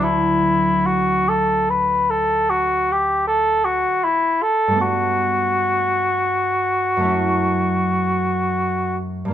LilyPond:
<<
  \new Staff \with { instrumentName = "Cor anglais" } { \time 12/8 \key d \major \tempo 4. = 52 e'4 fis'8 a'8 b'8 a'8 fis'8 g'8 a'8 fis'8 e'8 a'8 | fis'1~ fis'4. r8 | }
  \new Staff \with { instrumentName = "Harp" } { \time 12/8 \key d \major <d, fis d' e' a'>1. | <g, a b d' a'>2. <fis, a cis' e' a'>2. | }
>>